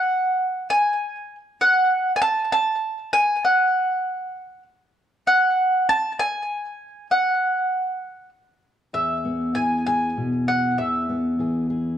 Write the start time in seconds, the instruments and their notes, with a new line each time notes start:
Already playing: mandolin F#5
0.70 mandolin G#5
1.61 mandolin F#5
2.16 mandolin G#5
2.22 mandolin A5
2.52 mandolin A5
3.13 mandolin G#5
3.45 mandolin F#5
5.27 mandolin F#5
5.89 mandolin A5
6.19 mandolin G#5
7.11 mandolin F#5
8.93 steel-string acoustic guitar E2 G#4, mandolin E5
9.25 steel-string acoustic guitar B3
9.55 steel-string acoustic guitar E3 G#4, mandolin G#5
9.87 steel-string acoustic guitar G#4, mandolin G#5
10.17 steel-string acoustic guitar B2
10.48 steel-string acoustic guitar G#4, mandolin F#5
10.78 steel-string acoustic guitar E2 G#4, mandolin E5
11.09 steel-string acoustic guitar B3
11.39 steel-string acoustic guitar E3 G#4
11.70 steel-string acoustic guitar G#4